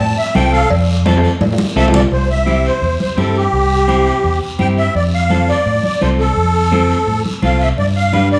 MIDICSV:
0, 0, Header, 1, 5, 480
1, 0, Start_track
1, 0, Key_signature, 0, "major"
1, 0, Tempo, 353774
1, 957, Time_signature, 4, 2, 24, 8
1, 11390, End_track
2, 0, Start_track
2, 0, Title_t, "Accordion"
2, 0, Program_c, 0, 21
2, 0, Note_on_c, 0, 81, 82
2, 226, Note_off_c, 0, 81, 0
2, 234, Note_on_c, 0, 76, 83
2, 469, Note_off_c, 0, 76, 0
2, 474, Note_on_c, 0, 79, 85
2, 706, Note_on_c, 0, 69, 87
2, 708, Note_off_c, 0, 79, 0
2, 714, Note_on_c, 0, 77, 102
2, 934, Note_off_c, 0, 69, 0
2, 948, Note_off_c, 0, 77, 0
2, 2415, Note_on_c, 0, 76, 100
2, 2518, Note_off_c, 0, 76, 0
2, 2646, Note_on_c, 0, 74, 89
2, 2751, Note_off_c, 0, 74, 0
2, 2886, Note_on_c, 0, 72, 78
2, 3103, Note_off_c, 0, 72, 0
2, 3124, Note_on_c, 0, 76, 91
2, 3611, Note_on_c, 0, 72, 86
2, 3612, Note_off_c, 0, 76, 0
2, 4049, Note_off_c, 0, 72, 0
2, 4093, Note_on_c, 0, 72, 73
2, 4329, Note_on_c, 0, 69, 70
2, 4330, Note_off_c, 0, 72, 0
2, 4568, Note_off_c, 0, 69, 0
2, 4576, Note_on_c, 0, 67, 87
2, 5952, Note_off_c, 0, 67, 0
2, 6241, Note_on_c, 0, 79, 88
2, 6348, Note_off_c, 0, 79, 0
2, 6482, Note_on_c, 0, 76, 91
2, 6703, Note_off_c, 0, 76, 0
2, 6729, Note_on_c, 0, 74, 83
2, 6834, Note_off_c, 0, 74, 0
2, 6967, Note_on_c, 0, 77, 96
2, 7448, Note_on_c, 0, 74, 90
2, 7456, Note_off_c, 0, 77, 0
2, 7908, Note_off_c, 0, 74, 0
2, 7929, Note_on_c, 0, 74, 87
2, 8166, Note_on_c, 0, 72, 80
2, 8170, Note_off_c, 0, 74, 0
2, 8272, Note_off_c, 0, 72, 0
2, 8406, Note_on_c, 0, 69, 98
2, 9788, Note_off_c, 0, 69, 0
2, 10097, Note_on_c, 0, 77, 81
2, 10329, Note_on_c, 0, 76, 87
2, 10335, Note_off_c, 0, 77, 0
2, 10435, Note_off_c, 0, 76, 0
2, 10562, Note_on_c, 0, 74, 85
2, 10669, Note_off_c, 0, 74, 0
2, 10802, Note_on_c, 0, 77, 96
2, 11247, Note_off_c, 0, 77, 0
2, 11286, Note_on_c, 0, 74, 91
2, 11390, Note_off_c, 0, 74, 0
2, 11390, End_track
3, 0, Start_track
3, 0, Title_t, "Clean electric guitar"
3, 0, Program_c, 1, 27
3, 473, Note_on_c, 1, 60, 77
3, 484, Note_on_c, 1, 65, 56
3, 485, Note_on_c, 1, 69, 80
3, 811, Note_off_c, 1, 60, 0
3, 814, Note_off_c, 1, 65, 0
3, 816, Note_off_c, 1, 69, 0
3, 1436, Note_on_c, 1, 60, 80
3, 1445, Note_on_c, 1, 65, 65
3, 1445, Note_on_c, 1, 69, 99
3, 1771, Note_off_c, 1, 60, 0
3, 1773, Note_off_c, 1, 65, 0
3, 1776, Note_off_c, 1, 69, 0
3, 2389, Note_on_c, 1, 60, 87
3, 2397, Note_on_c, 1, 65, 75
3, 2397, Note_on_c, 1, 69, 99
3, 2727, Note_off_c, 1, 60, 0
3, 2729, Note_off_c, 1, 65, 0
3, 2731, Note_off_c, 1, 69, 0
3, 3336, Note_on_c, 1, 60, 61
3, 3342, Note_on_c, 1, 64, 53
3, 3348, Note_on_c, 1, 67, 65
3, 3680, Note_off_c, 1, 60, 0
3, 3683, Note_off_c, 1, 64, 0
3, 3686, Note_off_c, 1, 67, 0
3, 4298, Note_on_c, 1, 60, 62
3, 4310, Note_on_c, 1, 67, 77
3, 4311, Note_on_c, 1, 64, 54
3, 4642, Note_off_c, 1, 60, 0
3, 4646, Note_off_c, 1, 64, 0
3, 4649, Note_off_c, 1, 67, 0
3, 5261, Note_on_c, 1, 60, 74
3, 5270, Note_on_c, 1, 64, 64
3, 5274, Note_on_c, 1, 67, 80
3, 5606, Note_off_c, 1, 60, 0
3, 5606, Note_off_c, 1, 64, 0
3, 5610, Note_off_c, 1, 67, 0
3, 6226, Note_on_c, 1, 60, 65
3, 6237, Note_on_c, 1, 64, 48
3, 6239, Note_on_c, 1, 67, 72
3, 6568, Note_off_c, 1, 60, 0
3, 6569, Note_off_c, 1, 64, 0
3, 6573, Note_off_c, 1, 67, 0
3, 7187, Note_on_c, 1, 60, 63
3, 7200, Note_on_c, 1, 65, 51
3, 7201, Note_on_c, 1, 69, 70
3, 7529, Note_off_c, 1, 60, 0
3, 7531, Note_off_c, 1, 65, 0
3, 7535, Note_off_c, 1, 69, 0
3, 8158, Note_on_c, 1, 60, 60
3, 8161, Note_on_c, 1, 65, 58
3, 8173, Note_on_c, 1, 69, 56
3, 8494, Note_off_c, 1, 60, 0
3, 8498, Note_off_c, 1, 65, 0
3, 8498, Note_off_c, 1, 69, 0
3, 9112, Note_on_c, 1, 60, 74
3, 9120, Note_on_c, 1, 65, 56
3, 9124, Note_on_c, 1, 69, 82
3, 9452, Note_off_c, 1, 60, 0
3, 9453, Note_off_c, 1, 65, 0
3, 9457, Note_off_c, 1, 69, 0
3, 10072, Note_on_c, 1, 60, 62
3, 10080, Note_on_c, 1, 65, 59
3, 10088, Note_on_c, 1, 69, 57
3, 10411, Note_off_c, 1, 60, 0
3, 10416, Note_off_c, 1, 65, 0
3, 10417, Note_off_c, 1, 69, 0
3, 11022, Note_on_c, 1, 62, 63
3, 11036, Note_on_c, 1, 67, 49
3, 11036, Note_on_c, 1, 71, 69
3, 11366, Note_off_c, 1, 62, 0
3, 11369, Note_off_c, 1, 67, 0
3, 11373, Note_off_c, 1, 71, 0
3, 11390, End_track
4, 0, Start_track
4, 0, Title_t, "Fingered electric bass"
4, 0, Program_c, 2, 33
4, 0, Note_on_c, 2, 45, 92
4, 190, Note_off_c, 2, 45, 0
4, 482, Note_on_c, 2, 36, 91
4, 863, Note_off_c, 2, 36, 0
4, 955, Note_on_c, 2, 41, 91
4, 1722, Note_off_c, 2, 41, 0
4, 1910, Note_on_c, 2, 45, 97
4, 2103, Note_off_c, 2, 45, 0
4, 2385, Note_on_c, 2, 36, 90
4, 2772, Note_off_c, 2, 36, 0
4, 2867, Note_on_c, 2, 36, 84
4, 3637, Note_off_c, 2, 36, 0
4, 3825, Note_on_c, 2, 40, 78
4, 4021, Note_off_c, 2, 40, 0
4, 4303, Note_on_c, 2, 43, 76
4, 4692, Note_off_c, 2, 43, 0
4, 4786, Note_on_c, 2, 36, 82
4, 5558, Note_off_c, 2, 36, 0
4, 5754, Note_on_c, 2, 40, 74
4, 5947, Note_off_c, 2, 40, 0
4, 6233, Note_on_c, 2, 43, 75
4, 6618, Note_off_c, 2, 43, 0
4, 6715, Note_on_c, 2, 41, 83
4, 7484, Note_off_c, 2, 41, 0
4, 7679, Note_on_c, 2, 45, 80
4, 7870, Note_off_c, 2, 45, 0
4, 8166, Note_on_c, 2, 36, 75
4, 8547, Note_off_c, 2, 36, 0
4, 8635, Note_on_c, 2, 41, 79
4, 9404, Note_off_c, 2, 41, 0
4, 9596, Note_on_c, 2, 45, 83
4, 9789, Note_off_c, 2, 45, 0
4, 10075, Note_on_c, 2, 36, 77
4, 10460, Note_off_c, 2, 36, 0
4, 10554, Note_on_c, 2, 43, 82
4, 11324, Note_off_c, 2, 43, 0
4, 11390, End_track
5, 0, Start_track
5, 0, Title_t, "Drums"
5, 1, Note_on_c, 9, 56, 80
5, 9, Note_on_c, 9, 74, 74
5, 137, Note_off_c, 9, 56, 0
5, 145, Note_off_c, 9, 74, 0
5, 475, Note_on_c, 9, 63, 84
5, 482, Note_on_c, 9, 73, 76
5, 484, Note_on_c, 9, 66, 72
5, 611, Note_off_c, 9, 63, 0
5, 618, Note_off_c, 9, 73, 0
5, 620, Note_off_c, 9, 66, 0
5, 714, Note_on_c, 9, 73, 73
5, 849, Note_off_c, 9, 73, 0
5, 955, Note_on_c, 9, 56, 110
5, 960, Note_on_c, 9, 74, 73
5, 1091, Note_off_c, 9, 56, 0
5, 1095, Note_off_c, 9, 74, 0
5, 1433, Note_on_c, 9, 65, 89
5, 1436, Note_on_c, 9, 63, 91
5, 1439, Note_on_c, 9, 73, 73
5, 1569, Note_off_c, 9, 65, 0
5, 1572, Note_off_c, 9, 63, 0
5, 1575, Note_off_c, 9, 73, 0
5, 1595, Note_on_c, 9, 65, 97
5, 1673, Note_on_c, 9, 73, 71
5, 1730, Note_off_c, 9, 65, 0
5, 1809, Note_off_c, 9, 73, 0
5, 1911, Note_on_c, 9, 63, 85
5, 1915, Note_on_c, 9, 74, 73
5, 1916, Note_on_c, 9, 56, 91
5, 1916, Note_on_c, 9, 66, 84
5, 2046, Note_off_c, 9, 63, 0
5, 2051, Note_off_c, 9, 74, 0
5, 2052, Note_off_c, 9, 56, 0
5, 2052, Note_off_c, 9, 66, 0
5, 2075, Note_on_c, 9, 66, 86
5, 2149, Note_on_c, 9, 63, 100
5, 2210, Note_off_c, 9, 66, 0
5, 2285, Note_off_c, 9, 63, 0
5, 2392, Note_on_c, 9, 66, 80
5, 2394, Note_on_c, 9, 73, 72
5, 2528, Note_off_c, 9, 66, 0
5, 2529, Note_off_c, 9, 73, 0
5, 2551, Note_on_c, 9, 66, 103
5, 2631, Note_on_c, 9, 73, 73
5, 2632, Note_on_c, 9, 64, 73
5, 2687, Note_off_c, 9, 66, 0
5, 2714, Note_on_c, 9, 66, 96
5, 2767, Note_off_c, 9, 73, 0
5, 2768, Note_off_c, 9, 64, 0
5, 2850, Note_off_c, 9, 66, 0
5, 2867, Note_on_c, 9, 74, 63
5, 3002, Note_off_c, 9, 74, 0
5, 3350, Note_on_c, 9, 73, 58
5, 3356, Note_on_c, 9, 63, 76
5, 3485, Note_off_c, 9, 73, 0
5, 3492, Note_off_c, 9, 63, 0
5, 3594, Note_on_c, 9, 73, 61
5, 3729, Note_off_c, 9, 73, 0
5, 3832, Note_on_c, 9, 74, 59
5, 3967, Note_off_c, 9, 74, 0
5, 4072, Note_on_c, 9, 63, 66
5, 4208, Note_off_c, 9, 63, 0
5, 4310, Note_on_c, 9, 63, 74
5, 4314, Note_on_c, 9, 73, 60
5, 4446, Note_off_c, 9, 63, 0
5, 4449, Note_off_c, 9, 73, 0
5, 4554, Note_on_c, 9, 73, 60
5, 4689, Note_off_c, 9, 73, 0
5, 4796, Note_on_c, 9, 74, 64
5, 4931, Note_off_c, 9, 74, 0
5, 5273, Note_on_c, 9, 63, 79
5, 5275, Note_on_c, 9, 73, 61
5, 5409, Note_off_c, 9, 63, 0
5, 5411, Note_off_c, 9, 73, 0
5, 5511, Note_on_c, 9, 73, 61
5, 5646, Note_off_c, 9, 73, 0
5, 5754, Note_on_c, 9, 74, 62
5, 5889, Note_off_c, 9, 74, 0
5, 6228, Note_on_c, 9, 63, 72
5, 6233, Note_on_c, 9, 73, 62
5, 6363, Note_off_c, 9, 63, 0
5, 6369, Note_off_c, 9, 73, 0
5, 6478, Note_on_c, 9, 73, 59
5, 6614, Note_off_c, 9, 73, 0
5, 6710, Note_on_c, 9, 74, 68
5, 6846, Note_off_c, 9, 74, 0
5, 7193, Note_on_c, 9, 73, 61
5, 7196, Note_on_c, 9, 63, 81
5, 7329, Note_off_c, 9, 73, 0
5, 7332, Note_off_c, 9, 63, 0
5, 7437, Note_on_c, 9, 73, 64
5, 7572, Note_off_c, 9, 73, 0
5, 7673, Note_on_c, 9, 74, 68
5, 7809, Note_off_c, 9, 74, 0
5, 7914, Note_on_c, 9, 63, 58
5, 8050, Note_off_c, 9, 63, 0
5, 8153, Note_on_c, 9, 73, 66
5, 8162, Note_on_c, 9, 63, 69
5, 8289, Note_off_c, 9, 73, 0
5, 8298, Note_off_c, 9, 63, 0
5, 8400, Note_on_c, 9, 73, 62
5, 8535, Note_off_c, 9, 73, 0
5, 8637, Note_on_c, 9, 74, 67
5, 8772, Note_off_c, 9, 74, 0
5, 9119, Note_on_c, 9, 73, 59
5, 9124, Note_on_c, 9, 63, 77
5, 9255, Note_off_c, 9, 73, 0
5, 9260, Note_off_c, 9, 63, 0
5, 9358, Note_on_c, 9, 73, 62
5, 9493, Note_off_c, 9, 73, 0
5, 9602, Note_on_c, 9, 74, 64
5, 9738, Note_off_c, 9, 74, 0
5, 9845, Note_on_c, 9, 63, 61
5, 9981, Note_off_c, 9, 63, 0
5, 10077, Note_on_c, 9, 63, 82
5, 10083, Note_on_c, 9, 73, 63
5, 10213, Note_off_c, 9, 63, 0
5, 10219, Note_off_c, 9, 73, 0
5, 10320, Note_on_c, 9, 73, 68
5, 10455, Note_off_c, 9, 73, 0
5, 10557, Note_on_c, 9, 74, 63
5, 10693, Note_off_c, 9, 74, 0
5, 11038, Note_on_c, 9, 63, 86
5, 11045, Note_on_c, 9, 73, 61
5, 11174, Note_off_c, 9, 63, 0
5, 11180, Note_off_c, 9, 73, 0
5, 11282, Note_on_c, 9, 73, 57
5, 11390, Note_off_c, 9, 73, 0
5, 11390, End_track
0, 0, End_of_file